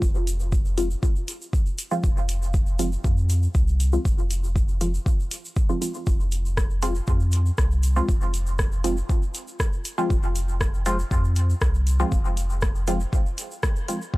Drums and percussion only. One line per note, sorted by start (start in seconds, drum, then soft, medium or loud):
0.02 kick loud
0.02 shaker medium
0.15 shaker soft
0.27 closed hi-hat medium
0.27 shaker loud
0.40 shaker soft
0.52 kick loud
0.52 shaker soft
0.65 shaker soft
0.78 closed hi-hat medium
0.78 shaker medium
0.91 shaker soft
1.03 kick loud
1.03 shaker soft
1.16 shaker soft
1.28 closed hi-hat medium
1.28 shaker medium
1.42 shaker soft
1.53 kick loud
1.53 shaker medium
1.66 shaker soft
1.78 closed hi-hat medium
1.78 shaker loud
1.91 shaker soft
2.03 kick loud
2.03 shaker medium
2.17 shaker soft
2.29 closed hi-hat medium
2.29 shaker medium
2.42 shaker soft
2.54 kick loud
2.54 shaker soft
2.66 shaker soft
2.79 closed hi-hat medium
2.79 shaker loud
2.92 shaker soft
3.04 kick loud
3.04 shaker soft
3.17 shaker soft
3.29 closed hi-hat medium
3.29 shaker medium
3.43 shaker soft
3.55 kick loud
3.55 shaker medium
3.67 shaker soft
3.80 closed hi-hat medium
3.80 shaker medium
3.92 shaker soft
4.05 kick loud
4.05 shaker medium
4.18 shaker soft
4.31 closed hi-hat medium
4.31 shaker medium
4.44 shaker soft
4.56 kick loud
4.56 shaker medium
4.68 shaker soft
4.81 closed hi-hat medium
4.81 shaker medium
4.94 shaker soft
5.06 kick loud
5.06 shaker medium
5.20 shaker soft
5.31 closed hi-hat medium
5.31 shaker loud
5.45 shaker soft
5.56 kick loud
5.56 shaker soft
5.69 shaker soft
5.82 closed hi-hat medium
5.82 shaker loud
5.94 shaker soft
6.07 kick loud
6.07 shaker medium
6.20 shaker soft
6.32 closed hi-hat medium
6.32 shaker medium
6.45 shaker soft
6.57 kick loud
6.57 cross-stick medium
6.57 shaker medium
6.70 shaker soft
6.82 closed hi-hat medium
6.82 shaker medium
6.95 shaker soft
7.07 kick loud
7.07 shaker soft
7.20 shaker soft
7.32 closed hi-hat medium
7.32 shaker medium
7.46 shaker soft
7.58 kick loud
7.58 cross-stick medium
7.58 shaker medium
7.71 shaker soft
7.83 closed hi-hat medium
7.83 shaker loud
7.96 shaker soft
8.09 kick loud
8.09 shaker medium
8.21 shaker soft
8.34 closed hi-hat medium
8.34 shaker medium
8.46 shaker soft
8.59 kick loud
8.59 cross-stick medium
8.59 shaker medium
8.72 shaker soft
8.84 closed hi-hat medium
8.84 shaker medium
8.97 shaker soft
9.09 kick loud
9.09 shaker soft
9.22 shaker soft
9.34 closed hi-hat medium
9.34 shaker medium
9.47 shaker soft
9.60 kick loud
9.60 cross-stick medium
9.60 shaker medium
9.73 shaker soft
9.85 closed hi-hat medium
9.85 shaker medium
9.98 shaker soft
10.10 kick loud
10.10 shaker soft
10.23 shaker soft
10.36 closed hi-hat medium
10.36 shaker medium
10.48 shaker soft
10.61 kick loud
10.61 cross-stick medium
10.61 shaker soft
10.74 shaker soft
10.86 closed hi-hat medium
10.86 shaker medium
10.99 shaker soft
11.11 kick loud
11.11 shaker soft
11.24 shaker soft
11.36 closed hi-hat medium
11.36 shaker medium
11.50 shaker soft
11.61 kick loud
11.61 cross-stick medium
11.61 shaker soft
11.74 shaker soft
11.87 closed hi-hat medium
11.87 shaker medium
12.00 shaker soft
12.12 kick loud
12.12 shaker medium
12.25 shaker soft
12.37 closed hi-hat medium
12.37 shaker medium
12.50 shaker soft
12.61 kick loud
12.61 cross-stick medium
12.61 shaker soft
12.75 shaker soft
12.87 closed hi-hat medium
12.87 shaker medium
13.00 shaker soft
13.13 kick loud
13.13 shaker soft
13.26 shaker soft
13.38 closed hi-hat medium
13.38 shaker medium
13.51 shaker soft
13.63 kick loud
13.63 cross-stick medium
13.63 shaker medium
13.76 shaker soft
13.88 closed hi-hat medium
13.88 shaker medium
14.02 shaker soft
14.14 kick loud